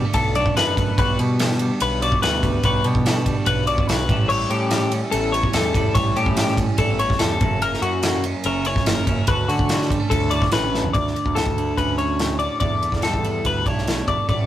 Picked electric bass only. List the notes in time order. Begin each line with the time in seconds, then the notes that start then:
0.14 B1
0.57 F#2
0.98 B1
1.19 B2
1.81 B1
2.23 D2
2.64 B1
2.85 B2
3.47 B1
3.88 B1
4.09 A1
4.50 A2
5.12 A1
5.54 E2
5.95 A1
6.17 A2
6.78 A1
7.21 E2
7.41 F#1
7.82 F#2
8.45 F#1
8.87 F#1
9.28 D2
9.49 D3
10.11 D2
10.53 A1
10.95 D2
11.26 D2
11.46 D2
11.77 D2
12.61 E2
12.93 E2
13.14 E2
13.45 D2
13.66 B1
14.08 E2
14.29 A1